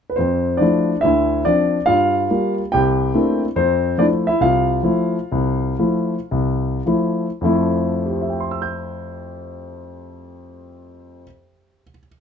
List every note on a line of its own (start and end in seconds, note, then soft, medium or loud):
0.10 0.16 B4 medium
0.16 0.56 F2 medium
0.16 0.58 C4 soft
0.16 0.61 C5 medium
0.57 0.91 F3 soft
0.57 1.00 D4 medium
0.57 1.04 D5 medium
0.62 0.91 A3 soft
0.62 0.92 E4 soft
1.01 1.42 D2 medium
1.01 1.41 D3 medium
1.01 1.44 E4 medium
1.01 1.47 E5 medium
1.45 1.76 F3 soft
1.45 1.77 C4 soft
1.45 1.77 D4 medium
1.45 1.90 D5 medium
1.86 2.25 G2 medium
1.86 2.29 F4 medium
1.86 2.54 F5 medium
2.30 2.61 G3 soft
2.30 2.60 A#3 soft
2.30 2.61 F4 soft
2.72 3.10 C2 medium
2.72 3.39 G4 medium
2.72 3.39 G5 medium
3.14 3.44 A3 soft
3.14 3.45 A#3 soft
3.14 3.44 C4 soft
3.14 3.45 D4 soft
3.14 3.45 E4 medium
3.56 3.93 F2 medium
3.56 3.96 C4 medium
3.56 4.00 C5 medium
3.98 4.28 F3 soft
3.98 4.28 A3 soft
3.98 4.07 D4 medium
3.98 4.27 E4 soft
3.98 4.05 D5 medium
4.27 4.42 E4 medium
4.27 4.42 E5 medium
4.40 4.79 C2 medium
4.40 6.81 F4 medium
4.40 6.80 F5 medium
4.83 5.15 F3 soft
4.83 5.15 A3 soft
4.83 5.16 E4 medium
5.32 5.73 C2 medium
5.79 6.14 F3 soft
5.79 6.14 A3 soft
5.79 6.14 E4 soft
6.31 6.78 C2 medium
6.86 7.26 F3 soft
6.86 7.26 A3 soft
6.86 7.26 E4 medium
7.41 11.21 F2 medium
7.41 11.23 F3 soft
7.41 11.24 A3 medium
7.41 11.25 E4 medium
8.06 11.82 G4 soft
8.12 11.88 C5 soft
8.22 11.98 E5 soft
8.30 12.06 G5 soft
8.40 12.16 C6 soft
8.51 12.20 E6 soft
8.62 12.20 G6 soft